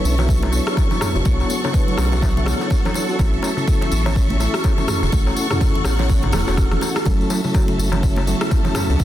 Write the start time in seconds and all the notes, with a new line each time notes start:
Already playing: B3 D4 E4 A4 C#5 E5 C#6
0.04 B1 C#4, tambourine
0.18 B3 D4 E4 F#4 A4 E5, tambourine, muted conga, darbuka ka, darbuka tek, low conga
0.28 F#3, kick, tambourine
0.42 E4, tambourine, muted conga, high conga, darbuka tek
0.52 B3 D4 E4 A4 C#5, tambourine
0.67 A4, cross-stick, tambourine
0.77 kick, tambourine, muted conga, darbuka tek
0.91 B3 D4 E4 A4 C#5, tambourine, darbuka ka, low conga
1.01 cross-stick, mid tom, tambourine, muted conga, darbuka tek, high conga
1.15 F#1 F#4, tambourine, darbuka dum
1.25 B1 B3 D4 E4 A4 C#5 F#5, kick, tambourine, muted conga, high conga
1.40 tambourine, darbuka tek
1.49 B3, tambourine, muted conga
1.64 B3 D4 E4 A4 C#5, tambourine, darbuka tek, darbuka dum
1.73 B4, kick, tambourine
1.88 F#3, tambourine, muted conga
1.97 B1 C#4, cross-stick, tambourine, high conga, darbuka tek
2.12 B3 D4 E4 F#4 A4 E5, tambourine, muted conga, darbuka ka, low conga
2.22 F#3, kick, tambourine, darbuka tek, low conga
2.36 E4, tambourine, muted conga, darbuka dum
2.46 B3 D4 E4 A4 C#5, cross-stick, tambourine, darbuka ka, high conga, low conga
2.60 A4, tambourine, darbuka tek
2.70 kick, tambourine, muted conga
2.85 B3 D4 E4 A4 C#5, tambourine, darbuka tek, low conga
2.94 tambourine, muted conga, darbuka ka
3.09 F#4, tambourine
3.19 A1 A3 C#4 E4 A4 E5 C#6, kick, tambourine, muted conga, darbuka tek
3.33 tambourine
3.42 A3, tambourine, muted conga, darbuka tek
3.57 C#4 E4 A4, tambourine, darbuka dum
3.67 A4, kick, tambourine
3.81 E3, tambourine, muted conga, darbuka tek
3.91 A1 B3, tambourine
4.06 C#4 E4 C#5, tambourine, darbuka ka, muted conga, darbuka tek, low conga
4.16 E3, kick, tambourine
4.30 C#4, tambourine, muted conga, high conga
4.40 A3 C#4 E4 A4, tambourine, darbuka tek
4.54 F#4, cross-stick, tambourine
4.64 kick, tambourine, muted conga, darbuka tek
4.78 C#4 E4 A4, tambourine, darbuka ka, low conga
4.88 cross-stick, mid tom, tambourine, muted conga, high conga
5.02 E1 E4, tambourine, darbuka tek, darbuka dum
5.12 A1 A3 C#4 E4 A4 F#5, kick, tambourine, muted conga, high conga
5.27 tambourine, darbuka tek
5.36 A3, tambourine, muted conga
5.51 C#4 E4 A4, cross-stick, mid tom, tambourine, darbuka dum
5.60 A4, kick, tambourine, darbuka tek
5.75 E3, tambourine, muted conga
5.84 A1 B3, cross-stick, tambourine, high conga, darbuka tek
5.99 C#4 E4 C#5, tambourine, darbuka ka, muted conga, low conga
6.09 E3, kick, tambourine, low conga
6.23 C#4, mid tom, tambourine, muted conga, darbuka tek, darbuka dum
6.32 E1 A3 C#4 E4 A4, cross-stick, tambourine, darbuka ka, high conga, low conga
6.47 E1 F#4, tambourine, darbuka tek
6.57 kick, cross-stick, tambourine, muted conga
6.71 C#4 E4 A4, cross-stick, tambourine, low conga
6.81 tambourine, muted conga, darbuka ka, darbuka tek
6.96 E4, cross-stick, tambourine
7.05 F#1 F#3 A3 C#4 E4 F#4 A4 E5 A5, kick, tambourine, muted conga
7.21 tambourine
7.30 F#3, tambourine, muted conga, darbuka tek
7.44 F#3 A3 C#4 E4 A4, tambourine, darbuka dum
7.54 F#4, kick, tambourine, darbuka tek
7.68 C#3, tambourine, muted conga
7.78 F#1 A3, tambourine
7.92 F#3 A3 C#4 E4 C#5, tambourine, darbuka ka, muted conga, darbuka tek, low conga
8.03 C#3, kick, tambourine
8.16 B3, tambourine, muted conga, high conga, darbuka tek
8.27 F#3 A3 C#4 E4 A4, tambourine
8.41 E4, cross-stick, tambourine
8.51 kick, tambourine, muted conga, darbuka tek
8.65 F#3 A3 C#4 E4 A4, tambourine, darbuka ka, low conga
8.75 cross-stick, mid tom, tambourine, muted conga, high conga, darbuka tek
8.89 C#2 C#4, tambourine, darbuka dum
8.99 F#1 F#3 A3 C#4 E4 A4, kick, tambourine, muted conga, high conga